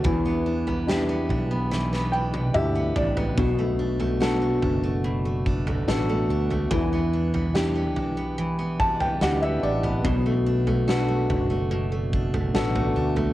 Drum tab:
SD |----o---oo------|----o-------o---|----o-------o---|----o-------o---|
T1 |-----------o----|----------------|----------------|----------------|
T2 |------------o---|----------------|----------------|----------------|
FT |o--o--o-------oo|o--o--o----o---o|o--o--o----o---o|o--o--o----o-o-o|
BD |o---------------|o---------o-----|o---------o-----|o---------o-----|